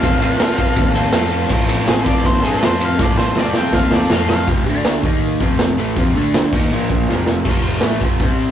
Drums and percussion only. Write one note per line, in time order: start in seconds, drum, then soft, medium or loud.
0.03 kick loud
0.03 ride loud
0.22 ride medium
0.40 snare loud
0.40 ride loud
0.58 kick medium
0.58 ride medium
0.76 kick loud
0.76 ride loud
0.95 ride medium
1.13 snare loud
1.13 ride loud
1.32 ride medium
1.49 kick loud
1.49 crash loud
1.69 ride medium
1.88 snare loud
1.88 ride loud
2.06 kick medium
2.06 ride medium
2.25 kick medium
2.25 ride loud
2.44 ride medium
2.63 snare loud
2.63 ride loud
2.81 ride medium
2.99 kick loud
2.99 snare medium
3.18 snare medium
3.36 snare medium
3.53 snare medium
3.73 kick medium
3.73 snare medium
3.91 snare medium
4.10 snare loud
4.29 snare loud
4.48 kick loud
4.48 open hi-hat medium
4.66 open hi-hat medium
4.85 snare loud
4.85 open hi-hat medium
5.03 kick loud
5.03 open hi-hat medium
5.22 open hi-hat medium
5.40 kick medium
5.40 open hi-hat medium
5.59 snare loud
5.59 open hi-hat medium
5.78 open hi-hat medium
5.96 kick loud
5.96 open hi-hat medium
6.15 open hi-hat medium
6.34 snare loud
6.34 open hi-hat medium
6.53 kick loud
6.53 crash medium
6.90 kick medium
6.90 open hi-hat medium
7.09 snare medium
7.26 snare medium
7.45 kick loud
7.45 crash loud
7.63 open hi-hat medium
7.81 snare loud
7.81 open hi-hat medium
8.01 kick loud
8.01 open hi-hat medium
8.19 kick loud
8.19 open hi-hat medium
8.39 open hi-hat medium